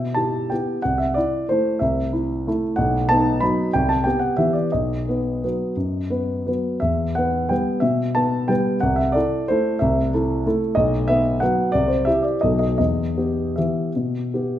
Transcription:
0.00 0.16 B2 soft
0.00 0.16 E5 soft
0.14 0.47 E4 soft
0.14 0.47 G4 soft
0.14 0.50 A5 medium
0.50 0.81 B3 soft
0.50 0.81 E4 soft
0.50 0.81 G4 soft
0.50 0.83 G5 soft
0.82 1.15 C2 soft
0.82 0.99 F#5 medium
0.98 1.15 E5 soft
1.14 1.46 E4 soft
1.14 1.48 D5 medium
1.49 1.79 A3 soft
1.49 1.79 E4 soft
1.49 1.81 C5 medium
1.79 2.13 C2 soft
1.79 2.63 E5 medium
2.13 2.43 E4 soft
2.47 2.76 A3 soft
2.47 2.76 E4 soft
2.76 3.08 B1 soft
2.76 3.08 F#5 medium
3.09 3.39 B3 soft
3.09 3.39 D#4 soft
3.09 3.41 A5 medium
3.40 3.71 F#3 soft
3.40 3.71 B3 soft
3.40 3.71 D#4 soft
3.40 3.73 B5 medium
3.73 4.05 C2 soft
3.73 3.89 G5 medium
3.89 4.05 A5 medium
4.04 4.35 B3 soft
4.04 4.36 G4 soft
4.04 4.21 G5 medium
4.19 4.37 F#5 medium
4.37 4.69 E3 soft
4.37 4.70 B3 soft
4.37 4.70 G4 soft
4.37 4.55 E5 medium
4.53 4.71 D5 soft
4.72 5.07 B1 soft
4.72 6.48 D#5 soft
5.09 5.40 B3 soft
5.09 5.41 B4 soft
5.44 5.75 F#3 soft
5.44 5.75 B3 soft
5.44 5.75 B4 soft
5.76 6.10 F#2 soft
6.10 6.44 B3 soft
6.10 6.44 B4 soft
6.46 6.79 F#3 soft
6.46 6.79 B3 soft
6.46 6.79 B4 soft
6.80 7.15 E2 soft
6.80 7.15 E5 medium
7.15 7.48 B3 soft
7.15 7.48 B4 soft
7.15 7.50 F#5 medium
7.49 7.80 G3 soft
7.49 7.80 B3 soft
7.49 7.80 B4 soft
7.49 7.83 G5 medium
7.80 8.15 B2 soft
7.80 8.15 E5 medium
8.15 8.46 B3 soft
8.15 8.46 B4 soft
8.15 8.49 A5 medium
8.48 8.79 G3 soft
8.48 8.79 B3 soft
8.48 8.80 B4 soft
8.48 8.82 G5 medium
8.81 9.14 C2 soft
8.81 8.98 F#5 medium
8.96 9.14 E5 medium
9.12 9.45 E4 soft
9.12 9.45 A4 soft
9.12 9.47 D5 medium
9.48 9.78 A3 soft
9.48 9.78 E4 soft
9.48 9.78 A4 soft
9.48 9.80 C5 medium
9.79 10.12 C2 soft
9.79 10.61 E5 medium
10.14 10.43 E4 soft
10.14 10.43 A4 soft
10.46 10.74 A3 soft
10.46 10.74 E4 soft
10.46 10.74 A4 soft
10.75 11.07 B1 medium
10.75 11.07 D#5 medium
11.08 11.38 B3 soft
11.08 11.38 B4 soft
11.08 11.41 E5 medium
11.40 11.71 F#3 soft
11.40 11.71 B3 soft
11.40 11.71 B4 soft
11.40 11.73 F#5 medium
11.72 12.06 C2 soft
11.72 11.89 D5 medium
11.88 12.06 C5 soft
12.05 12.39 E4 soft
12.05 12.39 G4 soft
12.05 12.23 E5 medium
12.23 12.41 D5 medium
12.41 12.79 B1 soft
12.41 12.76 F#3 soft
12.41 12.76 B3 soft
12.41 12.77 A4 soft
12.41 12.58 D#5 medium
12.59 12.76 D#5 medium
12.78 13.16 E2 soft
12.78 13.55 D#5 medium
13.17 13.52 B3 soft
13.17 13.52 G4 soft
13.56 13.92 E3 soft
13.56 13.92 B3 soft
13.56 13.92 G4 soft
13.56 14.59 E5 soft
13.96 14.32 B2 soft
14.34 14.59 B3 soft
14.34 14.59 G4 soft

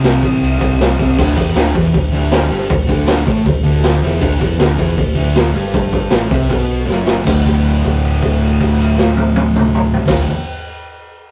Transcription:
0.01 0.18 C2 medium
0.01 0.77 C3 loud
0.01 0.62 G3 loud
0.01 snare loud
0.01 crash medium
0.01 shaker medium
0.06 0.58 C4 loud
0.20 0.38 A1 medium
0.20 kick medium
0.20 crash medium
0.20 shaker medium
0.30 shaker soft
0.40 0.56 C2 loud
0.40 crash medium
0.40 shaker loud
0.50 shaker soft
0.59 0.76 C2 medium
0.59 0.79 G3 medium
0.59 0.80 C4 medium
0.59 kick medium
0.59 crash medium
0.59 shaker medium
0.70 shaker soft
0.78 0.94 C2 medium
0.78 1.16 C3 medium
0.78 1.01 G3 medium
0.78 0.98 C4 medium
0.78 snare loud
0.78 crash medium
0.78 shaker loud
0.90 shaker soft
0.99 1.14 C2 medium
0.99 1.18 G3 medium
0.99 1.17 C4 medium
0.99 kick medium
0.99 crash medium
0.99 shaker medium
1.18 1.36 D1 loud
1.18 1.36 D2 loud
1.18 1.37 D3 loud
1.18 kick loud
1.18 crash loud
1.18 shaker loud
1.36 1.53 E1 medium
1.36 1.55 E2 medium
1.36 1.56 E3 loud
1.36 kick medium
1.36 open hi-hat medium
1.36 shaker medium
1.54 1.72 D1 medium
1.54 1.74 D2 loud
1.54 1.74 D3 loud
1.54 snare loud
1.54 open hi-hat medium
1.54 shaker loud
1.74 1.92 E1 loud
1.74 1.93 E2 loud
1.74 1.94 E3 loud
1.74 kick loud
1.74 open hi-hat medium
1.74 shaker medium
1.94 2.12 D1 medium
1.94 2.09 D2 medium
1.94 kick medium
1.94 open hi-hat medium
1.94 shaker loud
2.12 2.49 D1 medium
2.12 2.48 D2 loud
2.12 2.50 D3 loud
2.12 open hi-hat medium
2.12 shaker medium
2.32 snare loud
2.32 open hi-hat medium
2.32 shaker loud
2.49 2.69 G1 medium
2.49 2.68 G2 loud
2.49 2.69 G3 medium
2.49 snare soft
2.49 open hi-hat medium
2.49 shaker medium
2.69 2.87 D1 medium
2.69 2.85 D2 medium
2.69 kick loud
2.69 open hi-hat medium
2.69 shaker medium
2.87 3.24 D1 loud
2.87 3.25 D2 medium
2.87 3.26 D3 loud
2.87 kick medium
2.87 open hi-hat medium
2.87 shaker medium
3.06 snare loud
3.06 open hi-hat medium
3.06 shaker medium
3.25 3.44 A1 loud
3.25 3.45 A2 medium
3.25 3.45 A3 loud
3.25 kick medium
3.25 open hi-hat medium
3.25 shaker medium
3.45 3.64 D1 medium
3.45 3.61 D2 medium
3.45 kick medium
3.45 open hi-hat medium
3.45 shaker loud
3.63 4.01 D1 loud
3.63 4.02 D2 loud
3.63 4.02 D3 loud
3.63 open hi-hat medium
3.63 shaker medium
3.82 snare loud
3.82 open hi-hat medium
3.82 shaker medium
4.01 4.21 E1 loud
4.01 4.20 E2 medium
4.01 4.21 E3 loud
4.01 snare soft
4.01 open hi-hat medium
4.01 shaker medium
4.20 4.39 D1 loud
4.20 4.39 D2 loud
4.20 4.40 D3 loud
4.20 kick loud
4.20 open hi-hat loud
4.20 shaker loud
4.40 4.58 E1 medium
4.40 4.58 E2 medium
4.40 4.59 E3 loud
4.40 kick medium
4.40 open hi-hat medium
4.40 shaker medium
4.58 4.77 D1 loud
4.58 4.77 D2 medium
4.58 4.78 D3 loud
4.58 snare loud
4.58 open hi-hat loud
4.58 shaker medium
4.78 4.97 E1 loud
4.78 4.97 E2 loud
4.78 4.98 E3 loud
4.78 kick medium
4.78 open hi-hat medium
4.78 shaker medium
4.97 5.16 D1 loud
4.97 5.13 D2 medium
4.97 kick loud
4.97 open hi-hat loud
4.97 shaker medium
5.15 5.52 D1 medium
5.15 5.53 D2 loud
5.15 5.54 D3 loud
5.15 open hi-hat medium
5.15 shaker medium
5.35 snare loud
5.35 open hi-hat medium
5.35 shaker medium
5.54 5.73 G1 medium
5.54 5.73 G2 medium
5.54 5.73 G3 loud
5.54 open hi-hat medium
5.54 shaker medium
5.73 6.09 G1 loud
5.73 6.12 G2 loud
5.73 6.12 G3 loud
5.73 kick loud
5.73 open hi-hat medium
5.73 shaker loud
5.92 kick loud
5.92 open hi-hat medium
5.92 shaker medium
6.10 6.30 A1 loud
6.10 6.30 A2 loud
6.10 6.31 A3 loud
6.10 snare loud
6.10 open hi-hat medium
6.10 shaker loud
6.31 6.49 C2 loud
6.31 6.49 C3 medium
6.31 6.50 C4 loud
6.31 kick medium
6.31 open hi-hat medium
6.31 shaker medium
6.49 6.86 B1 loud
6.49 6.86 B2 medium
6.49 6.87 B3 loud
6.49 kick medium
6.49 open hi-hat medium
6.49 shaker medium
6.69 open hi-hat medium
6.69 shaker medium
6.86 7.24 F#1 loud
6.86 7.23 F#2 loud
6.86 7.26 F#3 medium
6.86 snare medium
6.86 shaker medium
7.06 snare loud
7.06 shaker medium
7.24 10.00 D1 loud
7.24 10.05 D2 loud
7.24 10.08 A2 loud
7.24 kick loud
7.24 crash loud
7.24 shaker medium
7.28 10.10 D3 loud
7.46 kick medium
7.46 crash soft
7.65 crash soft
7.85 kick medium
7.85 crash medium
8.04 crash soft
8.23 kick medium
8.23 crash medium
8.41 crash soft
8.61 kick medium
8.61 crash medium
8.80 crash medium
8.98 snare medium
9.17 high tom medium
9.36 high tom loud
9.56 mid tom loud
9.75 mid tom loud
9.94 floor tom loud
10.06 10.24 D1 loud
10.06 10.24 D2 loud
10.06 10.25 A2 loud
10.06 kick loud
10.06 snare loud
10.06 crash loud
10.10 10.26 D3 loud

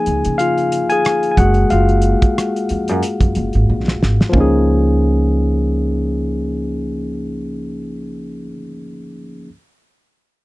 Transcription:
0.00 1.39 F3 soft
0.00 1.39 A#3 soft
0.00 1.39 D#4 soft
0.00 0.36 G#4 medium
0.00 0.40 G#5 medium
0.06 0.21 C#2 medium
0.06 closed hi-hat medium
0.25 0.79 C#3 medium
0.25 closed hi-hat medium
0.38 0.87 F4 medium
0.38 0.86 F5 medium
0.38 closed hi-hat medium
0.58 closed hi-hat soft
0.72 closed hi-hat medium
0.89 1.29 G#4 medium
0.89 1.30 G#5 medium
0.89 closed hi-hat soft
1.05 cross-stick medium
1.05 closed hi-hat medium
1.23 closed hi-hat soft
1.31 1.37 G#5 medium
1.37 1.65 F#1 medium
1.37 3.98 G#3 soft
1.37 3.98 A#3 soft
1.37 1.69 F#4 medium
1.37 3.98 G#4 soft
1.37 1.71 F#5 medium
1.37 kick medium
1.37 closed hi-hat medium
1.54 closed hi-hat soft
1.70 2.13 F#1 medium
1.70 3.65 F4 medium
1.70 3.64 F5 medium
1.70 closed hi-hat medium
1.89 closed hi-hat soft
2.02 closed hi-hat medium
2.22 kick medium
2.22 closed hi-hat soft
2.38 cross-stick medium
2.38 closed hi-hat medium
2.56 closed hi-hat soft
2.69 2.89 F2 medium
2.69 closed hi-hat medium
2.88 3.00 F#2 medium
2.88 closed hi-hat soft
3.03 closed hi-hat medium
3.21 3.33 F#2 medium
3.21 kick medium
3.21 closed hi-hat soft
3.35 3.51 F#1 medium
3.35 closed hi-hat soft
3.53 3.66 G#1 medium
3.53 closed hi-hat soft
3.70 3.96 A#1 medium
3.88 snare soft
4.02 4.17 G#1 medium
4.02 snare medium
4.21 snare medium
4.29 8.41 F3 medium
4.29 8.43 A#3 medium
4.29 floor tom medium
4.34 8.44 C#2 medium
4.34 8.44 C#4 medium
4.34 kick medium
4.38 8.46 D#4 medium
4.38 8.47 G#4 medium

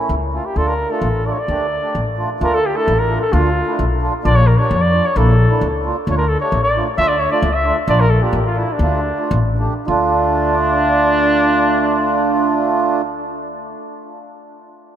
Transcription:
0.00 0.14 A3 medium
0.00 0.15 C#4 medium
0.00 0.15 E4 medium
0.09 0.37 C#2 loud
0.32 0.44 A3 medium
0.32 0.44 C#4 soft
0.32 0.45 E4 medium
0.32 0.47 F4 medium
0.46 0.59 G4 medium
0.55 0.84 D2 medium
0.55 0.73 A3 medium
0.55 0.73 D4 medium
0.55 0.74 F4 medium
0.55 0.69 A4 loud
0.68 0.93 A#4 loud
0.90 1.08 A3 medium
0.90 1.08 D4 medium
0.90 1.08 F4 medium
0.90 1.28 A4 medium
1.02 1.30 A1 loud
1.25 1.37 A3 medium
1.25 1.37 D4 medium
1.25 1.37 F4 medium
1.25 1.34 D5 medium
1.32 1.41 C#5 medium
1.40 2.19 D5 loud
1.48 1.76 D2 medium
1.48 1.66 A3 medium
1.48 1.66 D4 medium
1.48 1.67 G4 medium
1.82 2.00 A3 medium
1.82 2.00 D4 medium
1.82 2.01 G4 medium
1.95 2.23 A1 medium
2.17 2.29 A3 medium
2.17 2.29 D4 medium
2.17 2.30 F4 medium
2.39 2.69 D2 loud
2.39 2.58 A3 medium
2.39 2.58 D4 medium
2.39 2.59 F4 medium
2.39 2.56 A#4 loud
2.55 2.68 A4 loud
2.66 2.78 G4 medium
2.74 2.92 A3 medium
2.74 2.93 D4 medium
2.74 2.93 E4 medium
2.74 3.00 A4 loud
2.88 3.15 A1 loud
2.99 3.21 A#4 loud
3.09 3.21 A3 medium
3.09 3.21 D4 medium
3.09 3.22 F4 medium
3.21 3.34 A4 medium
3.31 3.61 D2 loud
3.31 3.49 A3 medium
3.31 3.50 D4 medium
3.31 3.50 F4 medium
3.31 4.02 F4 loud
3.66 3.84 A3 medium
3.66 3.84 D4 medium
3.66 3.85 E4 medium
3.79 4.07 B1 loud
4.01 4.13 A3 medium
4.01 4.13 D4 medium
4.01 4.14 F4 medium
4.24 4.53 A#1 loud
4.24 4.42 A#3 medium
4.24 4.42 D4 medium
4.24 4.42 F4 loud
4.24 4.37 D5 loud
4.36 4.49 C#5 loud
4.47 4.59 A#4 loud
4.58 4.76 A#3 medium
4.58 4.76 D4 medium
4.58 4.77 G4 medium
4.58 4.83 C#5 loud
4.71 4.98 F2 loud
4.81 5.07 D5 loud
4.92 5.04 A#3 medium
4.92 5.05 D4 medium
4.92 5.05 F4 medium
5.06 5.19 C#5 loud
5.15 5.43 A#1 loud
5.15 5.33 A#3 loud
5.15 5.33 D4 medium
5.15 5.34 E4 medium
5.15 5.85 A4 medium
5.49 5.67 A#3 medium
5.49 5.67 D4 medium
5.49 5.68 E4 medium
5.61 5.89 C#2 loud
5.83 5.95 A#3 medium
5.83 5.96 D4 medium
5.83 5.97 F4 medium
6.07 6.34 D2 loud
6.07 6.24 A3 medium
6.07 6.25 D4 medium
6.07 6.25 F4 medium
6.07 6.17 C#5 loud
6.17 6.30 A#4 medium
6.29 6.40 A4 medium
6.40 6.58 A3 medium
6.40 6.59 D4 medium
6.40 6.59 G4 medium
6.40 6.62 C#5 loud
6.52 6.79 A1 loud
6.63 6.85 D5 loud
6.75 6.87 A3 medium
6.75 6.87 D4 medium
6.75 6.87 F4 medium
6.97 7.25 D2 loud
6.97 7.14 A3 medium
6.97 7.15 D4 medium
6.97 7.15 F4 medium
6.97 7.10 E5 loud
7.08 7.21 D5 loud
7.19 7.31 C#5 loud
7.31 7.48 A3 medium
7.31 7.49 D4 medium
7.31 7.49 F4 medium
7.31 7.55 D5 loud
7.42 7.70 C#2 loud
7.54 7.77 E5 loud
7.65 7.76 A3 medium
7.65 7.77 D4 medium
7.65 7.77 F4 medium
7.87 8.15 A#1 loud
7.87 8.05 A#3 medium
7.87 8.05 D4 medium
7.87 8.05 F4 medium
7.87 8.02 D5 loud
8.00 8.12 A#4 loud
8.10 8.24 A4 medium
8.21 8.39 A#3 medium
8.21 8.39 D4 medium
8.21 8.40 F4 medium
8.21 8.45 G4 medium
8.33 8.62 A1 loud
8.46 8.60 F4 medium
8.55 8.68 A#3 medium
8.55 8.69 D4 medium
8.55 8.74 E4 medium
8.55 8.69 F4 medium
8.73 9.48 D4 medium
8.79 9.11 D2 loud
8.79 9.00 A3 medium
8.79 9.00 D4 medium
8.79 9.00 F4 medium
9.18 9.38 A3 medium
9.18 9.39 D4 medium
9.18 9.39 F4 medium
9.31 9.65 A1 loud
9.58 9.73 A3 medium
9.58 9.74 D4 medium
9.58 9.74 G4 medium
9.87 13.72 D2 medium
9.87 13.02 A3 loud
9.87 13.02 D4 loud
9.87 13.02 D4 medium
9.87 13.02 F4 medium

